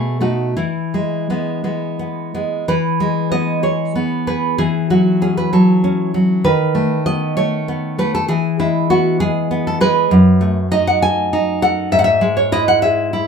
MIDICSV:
0, 0, Header, 1, 2, 480
1, 0, Start_track
1, 0, Key_signature, 4, "major"
1, 0, Tempo, 709220
1, 385, Time_signature, 6, 3, 24, 8
1, 1818, Tempo, 635593
1, 2778, Tempo, 627615
1, 4218, Tempo, 612245
1, 6138, Tempo, 606061
1, 10085, End_track
2, 0, Start_track
2, 0, Title_t, "Nylon-string guitar"
2, 0, Program_c, 0, 24
2, 0, Note_on_c, 0, 47, 45
2, 0, Note_on_c, 0, 57, 32
2, 0, Note_on_c, 0, 68, 54
2, 126, Note_off_c, 0, 68, 0
2, 132, Note_off_c, 0, 57, 0
2, 139, Note_on_c, 0, 57, 30
2, 143, Note_on_c, 0, 66, 40
2, 145, Note_on_c, 0, 63, 36
2, 361, Note_off_c, 0, 57, 0
2, 363, Note_off_c, 0, 47, 0
2, 364, Note_off_c, 0, 63, 0
2, 377, Note_off_c, 0, 66, 0
2, 383, Note_on_c, 0, 52, 41
2, 383, Note_on_c, 0, 64, 46
2, 637, Note_on_c, 0, 56, 33
2, 871, Note_off_c, 0, 56, 0
2, 879, Note_on_c, 0, 56, 31
2, 882, Note_on_c, 0, 59, 35
2, 1102, Note_off_c, 0, 56, 0
2, 1103, Note_off_c, 0, 59, 0
2, 1109, Note_on_c, 0, 56, 25
2, 1113, Note_on_c, 0, 59, 27
2, 1341, Note_off_c, 0, 59, 0
2, 1349, Note_on_c, 0, 59, 29
2, 1561, Note_off_c, 0, 64, 0
2, 1579, Note_off_c, 0, 56, 0
2, 1580, Note_off_c, 0, 59, 0
2, 1587, Note_on_c, 0, 56, 29
2, 1588, Note_on_c, 0, 59, 31
2, 1790, Note_off_c, 0, 52, 0
2, 1793, Note_off_c, 0, 56, 0
2, 1794, Note_off_c, 0, 59, 0
2, 1815, Note_on_c, 0, 52, 43
2, 1816, Note_on_c, 0, 71, 55
2, 2057, Note_on_c, 0, 56, 38
2, 2273, Note_off_c, 0, 71, 0
2, 2293, Note_on_c, 0, 75, 61
2, 2297, Note_on_c, 0, 59, 37
2, 2524, Note_off_c, 0, 75, 0
2, 2526, Note_off_c, 0, 59, 0
2, 2529, Note_on_c, 0, 68, 34
2, 2533, Note_on_c, 0, 73, 47
2, 2773, Note_off_c, 0, 56, 0
2, 2776, Note_on_c, 0, 59, 40
2, 3001, Note_off_c, 0, 73, 0
2, 3010, Note_off_c, 0, 68, 0
2, 3018, Note_on_c, 0, 68, 41
2, 3019, Note_on_c, 0, 71, 55
2, 3227, Note_off_c, 0, 52, 0
2, 3247, Note_off_c, 0, 68, 0
2, 3248, Note_off_c, 0, 71, 0
2, 3257, Note_on_c, 0, 68, 58
2, 3258, Note_off_c, 0, 59, 0
2, 3258, Note_on_c, 0, 52, 44
2, 3487, Note_off_c, 0, 68, 0
2, 3501, Note_on_c, 0, 54, 37
2, 3502, Note_on_c, 0, 66, 48
2, 3732, Note_off_c, 0, 66, 0
2, 3740, Note_on_c, 0, 61, 38
2, 3744, Note_on_c, 0, 68, 56
2, 3858, Note_off_c, 0, 68, 0
2, 3862, Note_on_c, 0, 71, 50
2, 3969, Note_off_c, 0, 54, 0
2, 3978, Note_on_c, 0, 54, 38
2, 3979, Note_off_c, 0, 71, 0
2, 3982, Note_on_c, 0, 69, 50
2, 4208, Note_off_c, 0, 61, 0
2, 4217, Note_on_c, 0, 61, 38
2, 4446, Note_off_c, 0, 54, 0
2, 4455, Note_on_c, 0, 54, 36
2, 4659, Note_off_c, 0, 52, 0
2, 4662, Note_off_c, 0, 69, 0
2, 4690, Note_off_c, 0, 61, 0
2, 4691, Note_off_c, 0, 54, 0
2, 4691, Note_on_c, 0, 51, 49
2, 4693, Note_on_c, 0, 71, 60
2, 4929, Note_on_c, 0, 57, 41
2, 5152, Note_off_c, 0, 71, 0
2, 5174, Note_on_c, 0, 75, 64
2, 5178, Note_on_c, 0, 59, 42
2, 5405, Note_off_c, 0, 75, 0
2, 5410, Note_off_c, 0, 57, 0
2, 5415, Note_on_c, 0, 73, 64
2, 5420, Note_on_c, 0, 57, 39
2, 5653, Note_off_c, 0, 59, 0
2, 5662, Note_on_c, 0, 59, 44
2, 5880, Note_off_c, 0, 73, 0
2, 5891, Note_off_c, 0, 57, 0
2, 5899, Note_on_c, 0, 57, 39
2, 5903, Note_on_c, 0, 71, 62
2, 6020, Note_off_c, 0, 71, 0
2, 6026, Note_on_c, 0, 69, 66
2, 6108, Note_off_c, 0, 51, 0
2, 6131, Note_off_c, 0, 69, 0
2, 6134, Note_on_c, 0, 68, 62
2, 6139, Note_off_c, 0, 57, 0
2, 6139, Note_on_c, 0, 52, 49
2, 6142, Note_off_c, 0, 59, 0
2, 6367, Note_off_c, 0, 68, 0
2, 6379, Note_on_c, 0, 56, 41
2, 6381, Note_on_c, 0, 64, 58
2, 6608, Note_off_c, 0, 64, 0
2, 6623, Note_on_c, 0, 66, 69
2, 6626, Note_on_c, 0, 59, 42
2, 6851, Note_off_c, 0, 66, 0
2, 6853, Note_off_c, 0, 56, 0
2, 6861, Note_on_c, 0, 68, 62
2, 6862, Note_on_c, 0, 56, 44
2, 7094, Note_off_c, 0, 59, 0
2, 7104, Note_on_c, 0, 59, 42
2, 7206, Note_off_c, 0, 68, 0
2, 7232, Note_on_c, 0, 69, 57
2, 7331, Note_off_c, 0, 56, 0
2, 7340, Note_on_c, 0, 56, 40
2, 7341, Note_off_c, 0, 69, 0
2, 7344, Note_on_c, 0, 71, 68
2, 7541, Note_off_c, 0, 52, 0
2, 7573, Note_off_c, 0, 56, 0
2, 7574, Note_off_c, 0, 59, 0
2, 7582, Note_on_c, 0, 42, 55
2, 7816, Note_on_c, 0, 57, 46
2, 8026, Note_off_c, 0, 71, 0
2, 8059, Note_on_c, 0, 63, 46
2, 8060, Note_on_c, 0, 75, 75
2, 8179, Note_off_c, 0, 75, 0
2, 8185, Note_on_c, 0, 78, 64
2, 8301, Note_off_c, 0, 78, 0
2, 8304, Note_on_c, 0, 80, 75
2, 8305, Note_on_c, 0, 69, 46
2, 8536, Note_off_c, 0, 63, 0
2, 8543, Note_off_c, 0, 57, 0
2, 8546, Note_on_c, 0, 63, 52
2, 8758, Note_off_c, 0, 80, 0
2, 8770, Note_off_c, 0, 69, 0
2, 8779, Note_on_c, 0, 69, 43
2, 8779, Note_on_c, 0, 78, 67
2, 8983, Note_off_c, 0, 42, 0
2, 9002, Note_off_c, 0, 78, 0
2, 9012, Note_off_c, 0, 69, 0
2, 9013, Note_off_c, 0, 63, 0
2, 9014, Note_on_c, 0, 44, 56
2, 9014, Note_on_c, 0, 76, 66
2, 9064, Note_off_c, 0, 76, 0
2, 9067, Note_on_c, 0, 78, 68
2, 9107, Note_off_c, 0, 78, 0
2, 9110, Note_on_c, 0, 76, 70
2, 9245, Note_on_c, 0, 56, 48
2, 9353, Note_off_c, 0, 76, 0
2, 9368, Note_on_c, 0, 73, 62
2, 9486, Note_off_c, 0, 73, 0
2, 9490, Note_on_c, 0, 64, 51
2, 9492, Note_on_c, 0, 75, 76
2, 9609, Note_off_c, 0, 75, 0
2, 9615, Note_on_c, 0, 78, 64
2, 9725, Note_off_c, 0, 78, 0
2, 9726, Note_on_c, 0, 68, 46
2, 9728, Note_on_c, 0, 76, 65
2, 9963, Note_off_c, 0, 64, 0
2, 9972, Note_on_c, 0, 64, 48
2, 9974, Note_off_c, 0, 56, 0
2, 10085, Note_off_c, 0, 44, 0
2, 10085, Note_off_c, 0, 64, 0
2, 10085, Note_off_c, 0, 68, 0
2, 10085, Note_off_c, 0, 76, 0
2, 10085, End_track
0, 0, End_of_file